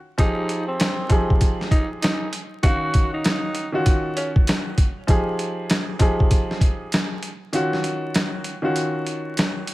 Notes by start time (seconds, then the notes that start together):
0.18 F3 D#4 G4 G#4, kick, closed hi-hat
0.49 closed hi-hat
0.68 C4
0.80 snare, closed hi-hat
1.09 F3 D#4 G4 G#4, kick, closed hi-hat
1.30 kick
1.41 kick, closed hi-hat
1.61 snare
1.71 D#4, kick, closed hi-hat
2.02 D#4, snare, closed hi-hat
2.33 closed hi-hat
2.63 D#3 C#4 F#4 F5, kick, closed hi-hat
2.94 kick, closed hi-hat
3.14 D#4
3.24 snare, closed hi-hat
3.55 closed hi-hat
3.72 D#3 C#4 F4 F#4
3.86 kick, closed hi-hat
4.16 C#4, closed hi-hat
4.36 kick
4.47 snare, closed hi-hat
4.78 kick, closed hi-hat
5.07 F3 D#4 G4 G#4, kick, closed hi-hat
5.39 closed hi-hat
5.70 snare, closed hi-hat
5.99 F3 D#4 G4 G#4, kick, closed hi-hat
6.20 kick
6.31 kick, closed hi-hat
6.51 snare
6.61 kick, closed hi-hat
6.92 snare, closed hi-hat
7.22 closed hi-hat
7.52 D#3 C#4 F4 F#4, closed hi-hat
7.73 snare
7.84 closed hi-hat
8.14 snare, closed hi-hat
8.44 closed hi-hat
8.62 D#3 C#4 F4 F#4
8.76 closed hi-hat
9.06 closed hi-hat
9.37 snare, closed hi-hat
9.67 closed hi-hat